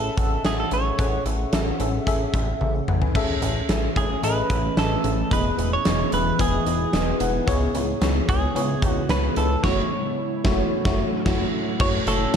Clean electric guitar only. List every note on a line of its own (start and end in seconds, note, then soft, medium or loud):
0.00 0.42 A4 medium
0.46 0.58 G#4 medium
0.60 0.72 A4 medium
0.73 1.23 C#5 medium
3.97 4.24 G#4 medium
4.24 4.78 B4 medium
4.79 5.32 A4 medium
5.33 5.73 B4 medium
5.73 6.10 C#5 loud
6.14 6.38 B4 medium
6.41 7.17 G#4 medium
8.29 8.89 G#4 medium
8.89 9.10 F#4 medium
9.10 9.37 B4 medium
9.37 9.62 A4 medium
9.64 11.22 C#5 loud
11.81 11.88 C#5 loud
12.08 12.36 A4 medium